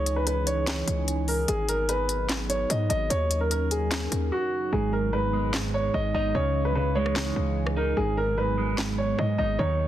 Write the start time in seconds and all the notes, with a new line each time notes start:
Already playing: C#2 E3 C#4 D#4 G#4 C#5
0.06 closed hi-hat
0.16 B4
0.27 B4, closed hi-hat
0.47 C#5, closed hi-hat
0.67 snare, clap, closed hi-hat
0.87 C#2, closed hi-hat
1.08 closed hi-hat
1.28 A#4, open hi-hat
1.48 G#1 F#3 B3 G#4, closed hi-hat
1.69 A#4, closed hi-hat
1.89 B4, closed hi-hat
2.09 closed hi-hat
2.29 snare, clap, closed hi-hat
2.49 C#5, closed hi-hat
2.70 G#2 D#5, closed hi-hat
2.90 G#1 D#5, closed hi-hat
3.10 D#2 C#4 D#4 A#4 C#5, closed hi-hat
3.31 closed hi-hat
3.40 A#4
3.51 A#4, closed hi-hat
3.71 G#4, closed hi-hat
3.91 snare, clap, closed hi-hat
4.12 D#2, closed hi-hat
4.32 F#4
4.73 G#1 G#2 B3 G#4
4.93 A#4
5.13 G#2 B4
5.33 G#3
5.54 G#2, snare, clap
5.74 C#5
5.94 G#1 D#5
6.14 G#1 D#4 D#5
6.35 C#2 C#3 E3 C#4 C#5
6.65 B4
6.75 C#3 B4
6.95 G#3 C#5
7.06 cross-stick
7.16 C#3, snare, clap
7.36 C#2
7.67 cross-stick
7.76 D#4 A#4
7.97 G#1 G#2 F#3 B3 G#4
8.17 A#4
8.37 G#2 B4
8.58 G#3
8.78 G#2, snare, clap
8.98 C#5
9.19 G#2 D#5
9.38 G#1 D#4 D#5
9.59 D#2 D#3 F#3 C#4 D#4 A#4 C#5